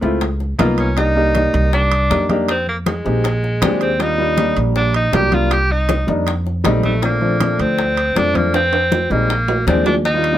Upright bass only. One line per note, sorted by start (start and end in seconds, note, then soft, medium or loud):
0.03 0.55 C#2 medium
0.59 1.48 C2 medium
1.54 2.07 C2 loud
2.11 2.99 F2 medium
3.06 3.58 A#1 medium
3.62 4.51 D#2 medium
4.56 5.09 A#1 loud
5.13 6.02 C2 medium
6.08 6.61 F2 loud
6.65 7.53 A#1 medium
7.59 8.12 D2 loud
8.16 9.05 F2 medium
9.10 9.63 A#1 medium
9.67 10.38 D#2 medium